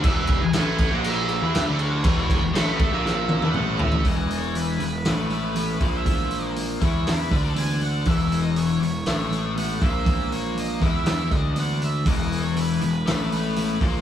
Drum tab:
CC |x-x-x-x-x-x-x-x-|x-x-x-x---------|----------------|----------------|
HH |----------------|----------------|o-o-o-o-o-o-o-o-|o-o-o-o-o-o-o-o-|
SD |----o-------o---|----o---o-------|--------o-------|--------o-------|
T1 |----------------|----------oo----|----------------|----------------|
T2 |----------------|------------o---|----------------|----------------|
FT |----------------|--------------oo|----------------|----------------|
BD |o-o---o---------|o-o---o---------|o-------------o-|o-----o---o-----|

CC |----------------|----------------|----------------|
HH |o-o-o-o-o-o-o-o-|o-o-o-o-o-o-o-o-|o-o-o-o-o-o-o-o-|
SD |--------o-------|--------o-------|--------o-------|
T1 |----------------|----------------|----------------|
T2 |----------------|----------------|----------------|
FT |----------------|----------------|----------------|
BD |o-------------o-|o-----o---o-----|o-------------o-|